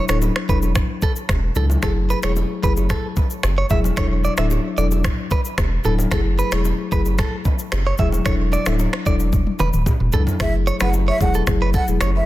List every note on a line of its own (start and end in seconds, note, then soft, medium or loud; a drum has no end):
0.09 0.30 D1 medium
0.09 0.26 F#3 medium
0.09 0.26 D4 medium
0.09 0.26 E4 medium
0.09 0.26 A4 medium
0.09 0.17 C#5 medium
0.09 finger snap medium
0.09 cross-stick medium
0.09 shaker medium
0.22 high bongo medium
0.22 shaker medium
0.36 finger snap medium
0.36 cross-stick medium
0.49 0.80 E1 medium
0.49 0.66 F#3 medium
0.49 0.66 D4 medium
0.49 0.67 E4 medium
0.49 0.67 A4 medium
0.49 0.58 B4 medium
0.49 kick medium
0.49 shaker medium
0.62 high bongo medium
0.62 shaker medium
0.75 finger snap medium
0.75 kick medium
0.75 cross-stick medium
0.75 low conga medium
0.75 shaker medium
1.02 1.11 A4 medium
1.02 kick loud
1.02 low bongo medium
1.02 shaker medium
1.16 shaker medium
1.29 1.50 E1 medium
1.29 finger snap medium
1.29 kick medium
1.29 cross-stick loud
1.29 high bongo medium
1.29 shaker medium
1.55 1.76 C#2 loud
1.55 1.74 F#3 medium
1.55 1.74 D4 medium
1.55 1.74 E4 medium
1.55 1.74 A4 medium
1.55 1.65 A4 medium
1.55 low conga medium
1.55 shaker medium
1.70 low bongo medium
1.70 shaker medium
1.82 2.14 F#1 medium
1.82 2.00 F#3 medium
1.82 2.00 A3 medium
1.82 2.00 E4 medium
1.82 2.00 G#4 loud
1.82 1.92 A4 medium
1.82 finger snap medium
1.82 kick loud
1.82 cross-stick loud
1.82 low conga medium
1.82 shaker medium
2.10 2.19 B4 medium
2.10 shaker medium
2.23 2.44 E1 medium
2.23 2.40 F#3 medium
2.23 2.40 A3 medium
2.23 2.40 E4 medium
2.23 2.41 G#4 medium
2.23 2.32 C#5 medium
2.23 finger snap medium
2.23 cross-stick medium
2.23 shaker medium
2.36 high bongo medium
2.36 shaker medium
2.63 2.94 F#1 medium
2.63 2.81 F#3 medium
2.63 2.81 A3 medium
2.63 2.81 E4 medium
2.63 2.81 G#4 medium
2.63 2.72 B4 medium
2.63 kick medium
2.63 shaker medium
2.77 high bongo medium
2.77 shaker medium
2.90 3.07 A4 medium
2.90 finger snap medium
2.90 kick medium
2.90 cross-stick medium
2.90 low conga medium
2.90 shaker medium
3.16 kick medium
3.16 low bongo medium
3.16 shaker medium
3.30 shaker medium
3.43 3.64 F#1 loud
3.43 finger snap medium
3.43 cross-stick loud
3.43 high bongo medium
3.43 shaker medium
3.58 3.66 C#5 medium
3.70 3.91 E1 medium
3.70 3.88 F#3 medium
3.70 3.88 A3 medium
3.70 3.88 E4 medium
3.70 3.88 G#4 medium
3.70 3.79 E5 medium
3.70 kick medium
3.70 low conga medium
3.70 shaker medium
3.84 low bongo medium
3.84 shaker medium
3.97 4.28 E1 loud
3.97 4.15 F#3 medium
3.97 4.15 D4 medium
3.97 4.15 E4 medium
3.97 4.15 A4 loud
3.97 4.06 C#5 medium
3.97 finger snap medium
3.97 kick loud
3.97 cross-stick medium
3.97 low conga medium
3.97 shaker medium
4.24 4.33 D5 medium
4.24 shaker medium
4.37 4.58 D1 medium
4.37 4.55 F#3 medium
4.37 4.55 D4 medium
4.37 4.55 E4 medium
4.37 4.55 A4 medium
4.37 4.46 E5 medium
4.37 finger snap medium
4.37 cross-stick medium
4.37 shaker medium
4.50 high bongo medium
4.50 shaker medium
4.77 5.09 E1 medium
4.77 4.95 F#3 medium
4.77 4.95 D4 medium
4.77 4.95 E4 medium
4.77 4.96 A4 medium
4.77 4.86 D5 medium
4.77 shaker medium
4.91 high bongo medium
4.91 shaker medium
5.04 finger snap medium
5.04 kick loud
5.04 cross-stick loud
5.04 low conga medium
5.04 shaker medium
5.31 5.40 B4 medium
5.31 kick loud
5.31 low bongo medium
5.31 shaker medium
5.45 shaker medium
5.58 5.78 E1 medium
5.58 finger snap medium
5.58 kick medium
5.58 cross-stick loud
5.58 high bongo medium
5.58 shaker medium
5.84 6.05 D1 medium
5.84 6.02 F#3 medium
5.84 6.02 D4 medium
5.84 6.03 E4 medium
5.84 5.94 A4 medium
5.84 6.03 A4 medium
5.84 low conga medium
5.84 shaker soft
5.98 low bongo medium
5.98 shaker medium
6.11 6.43 F#1 loud
6.11 6.29 F#3 medium
6.11 6.29 A3 medium
6.11 6.29 E4 medium
6.11 6.29 G#4 loud
6.11 6.20 A4 medium
6.11 finger snap medium
6.11 kick loud
6.11 cross-stick medium
6.11 low conga medium
6.11 shaker medium
6.39 6.53 B4 medium
6.39 shaker medium
6.52 6.73 E1 medium
6.52 6.69 F#3 medium
6.52 6.69 A3 medium
6.52 6.69 E4 medium
6.52 6.69 G#4 medium
6.52 6.60 C#5 medium
6.52 finger snap medium
6.52 cross-stick medium
6.52 shaker medium
6.65 high bongo medium
6.65 shaker medium
6.92 7.23 F#1 medium
6.92 7.09 F#3 medium
6.92 7.10 A3 medium
6.92 7.10 E4 medium
6.92 7.10 G#4 medium
6.92 7.01 B4 medium
6.92 kick medium
6.92 shaker medium
7.05 high bongo medium
7.05 shaker medium
7.18 7.35 A4 medium
7.18 finger snap medium
7.18 kick loud
7.18 cross-stick medium
7.18 low conga medium
7.18 shaker medium
7.45 kick loud
7.45 low bongo medium
7.45 shaker medium
7.59 shaker medium
7.72 7.93 F#1 loud
7.72 finger snap medium
7.72 cross-stick medium
7.72 high bongo medium
7.72 shaker medium
7.87 7.94 C#5 medium
7.98 8.20 E1 medium
7.98 8.17 F#3 medium
7.98 8.17 A3 medium
7.98 8.17 E4 medium
7.98 8.17 G#4 medium
7.98 8.08 E5 medium
7.98 kick loud
7.98 low conga medium
7.98 shaker medium
8.12 low bongo medium
8.12 shaker medium
8.25 8.57 E1 loud
8.25 8.43 F#3 medium
8.25 8.43 D4 medium
8.25 8.43 E4 medium
8.25 8.44 A4 loud
8.25 8.34 C#5 medium
8.25 finger snap medium
8.25 kick loud
8.25 cross-stick medium
8.25 low conga medium
8.25 shaker medium
8.52 8.67 D5 medium
8.52 low bongo medium
8.52 shaker medium
8.66 8.87 D1 medium
8.66 8.83 F#3 medium
8.66 8.83 D4 medium
8.66 8.83 E4 medium
8.66 8.83 A4 medium
8.66 8.75 E5 medium
8.66 finger snap medium
8.66 cross-stick medium
8.66 low bongo medium
8.66 shaker medium
8.79 high bongo medium
8.79 shaker medium
8.93 finger snap medium
8.93 cross-stick medium
9.06 9.47 E1 medium
9.06 9.24 F#3 medium
9.06 9.24 D4 medium
9.06 9.24 E4 medium
9.06 9.24 A4 medium
9.06 9.15 D5 medium
9.06 kick medium
9.06 shaker medium
9.20 high bongo medium
9.20 shaker medium
9.33 kick medium
9.33 high tom medium
9.33 low conga medium
9.33 shaker medium
9.47 high tom medium
9.59 9.70 E1 medium
9.59 9.68 B4 medium
9.59 mid tom medium
9.59 low bongo medium
9.59 shaker medium
9.73 9.84 D1 medium
9.73 mid tom medium
9.73 shaker medium
9.86 kick medium
9.86 mid tom medium
9.86 high bongo medium
9.86 shaker medium
10.00 10.10 E1 medium
10.00 mid tom medium
10.12 10.24 C#2 loud
10.12 10.31 F#3 medium
10.12 10.31 D4 medium
10.12 10.31 E4 medium
10.12 10.22 A4 medium
10.12 10.31 A4 medium
10.12 floor tom medium
10.12 low conga medium
10.12 shaker medium
10.27 floor tom medium
10.27 low bongo medium
10.27 shaker medium
10.40 10.71 F#1 loud
10.40 10.77 F#3 medium
10.40 10.78 A3 medium
10.40 10.78 E4 medium
10.40 10.78 G#4 loud
10.40 10.53 E5 loud
10.40 finger snap medium
10.40 kick loud
10.40 cross-stick loud
10.40 low conga medium
10.40 shaker medium
10.67 10.76 C#5 medium
10.67 shaker medium
10.80 11.11 F#1 medium
10.80 11.17 F#3 medium
10.80 11.17 A3 medium
10.80 11.18 E4 medium
10.80 11.18 G#4 medium
10.80 10.89 B4 medium
10.80 10.92 F#5 medium
10.80 finger snap medium
10.80 cross-stick medium
10.80 low bongo medium
10.80 shaker medium
10.93 high bongo medium
10.93 shaker medium
11.08 11.16 C#5 medium
11.08 11.19 E5 medium
11.20 11.41 E1 medium
11.20 11.45 F#3 medium
11.20 11.45 A3 medium
11.20 11.45 E4 medium
11.20 11.46 G#4 medium
11.20 11.33 F#5 medium
11.20 kick medium
11.20 shaker medium
11.34 11.43 A4 medium
11.34 high bongo medium
11.34 shaker medium
11.47 11.78 F#1 loud
11.47 11.85 F#3 medium
11.47 11.85 A3 medium
11.47 11.85 E4 medium
11.47 11.85 G#4 loud
11.47 finger snap medium
11.47 kick medium
11.47 cross-stick medium
11.47 low conga medium
11.47 shaker medium
11.62 11.69 B4 medium
11.74 11.83 A4 medium
11.74 11.87 F#5 medium
11.74 kick loud
11.74 low bongo medium
11.74 shaker medium
11.88 11.98 E1 medium
11.88 12.05 F#3 medium
11.88 12.05 A3 medium
11.88 12.05 E4 medium
11.88 12.05 G#4 medium
11.88 shaker medium
12.01 12.21 F#1 loud
12.01 12.10 C#5 medium
12.01 finger snap medium
12.01 cross-stick loud
12.01 high bongo medium
12.01 shaker medium
12.16 12.26 E5 medium